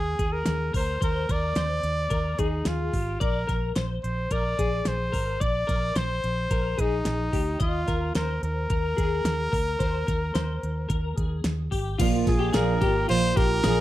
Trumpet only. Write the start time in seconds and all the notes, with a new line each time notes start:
Already playing: G#4
0.33 A#4
0.75 C5
1.03 A#4
1.31 D5
2.39 D#4
2.67 F4
3.21 A#4
4.03 C5
4.32 D5
4.88 C5
5.42 D5
5.98 C5
6.80 D#4
7.61 F4
8.16 A#4
8.44 A#4
12.27 G#4
12.55 A#4
13.10 C5
13.37 A#4